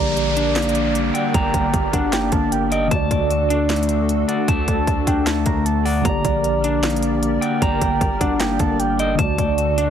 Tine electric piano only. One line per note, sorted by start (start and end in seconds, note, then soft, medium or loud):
0.00 2.85 D3 medium
0.00 2.87 A#3 medium
0.00 2.88 G4 medium
0.00 2.89 D5 medium
2.87 5.99 D3 medium
2.87 6.00 A3 medium
2.93 6.02 F#4 medium
2.93 6.03 D5 medium
6.01 9.13 D3 medium
6.01 9.14 A#3 medium
6.07 9.16 G4 medium
6.07 9.17 D5 medium
9.14 9.90 D3 medium
9.14 9.90 A3 medium
9.20 9.90 F#4 medium
9.20 9.90 D5 medium